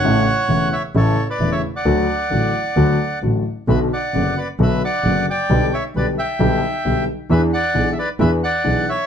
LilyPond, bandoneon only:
\new Staff \with { instrumentName = "Bandoneon" } { \time 4/4 \key d \major \tempo 4 = 133 << { fis''4. e''8 cis''8. d''8 e''8 fis''16~ | fis''2. r4 | e''8 fis''4 d''8 e''8 fis''4 g''8~ | g''8 e''8 d''8 g''2 r8 |
e''8 fis''8.~ fis''32 e''32 d''8 e''8 fis''4 e''8 | } \\ { cis''4. cis''8 a'8. b'8 cis''8 d''16~ | d''2. r4 | b'8 d''4 b'8 b'8 d''4 d''8~ | d''8 cis''8 b'8 e''2 r8 |
b'8 d''4 b'8 b'8 d''4 cis''8 | } >> }